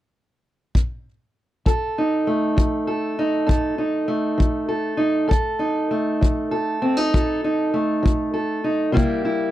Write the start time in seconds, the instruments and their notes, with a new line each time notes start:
0.75 kick
1.66 steel-string acoustic guitar F2 A4, kick
1.98 steel-string acoustic guitar D#4
2.27 steel-string acoustic guitar A3
2.57 steel-string acoustic guitar F3, kick
2.87 steel-string acoustic guitar A4
3.19 steel-string acoustic guitar D#4
3.46 steel-string acoustic guitar F2 A4, kick
3.78 steel-string acoustic guitar D#4
4.08 steel-string acoustic guitar A3
4.38 steel-string acoustic guitar F3, kick
4.68 steel-string acoustic guitar A4
4.97 steel-string acoustic guitar D#4
5.28 steel-string acoustic guitar F2 A4, kick
5.59 steel-string acoustic guitar D#4
5.91 steel-string acoustic guitar A3
6.21 steel-string acoustic guitar F3, kick
6.51 steel-string acoustic guitar A4
6.82 steel-string acoustic guitar C4
6.97 steel-string acoustic guitar D#4
7.14 steel-string acoustic guitar F2 A4, kick
7.44 steel-string acoustic guitar D#4
7.74 steel-string acoustic guitar A3
8.03 steel-string acoustic guitar F3, kick
8.34 steel-string acoustic guitar A4
8.64 steel-string acoustic guitar D#4
8.92 steel-string acoustic guitar C3 G3 A#3 E4 G4
8.97 kick
9.25 steel-string acoustic guitar E4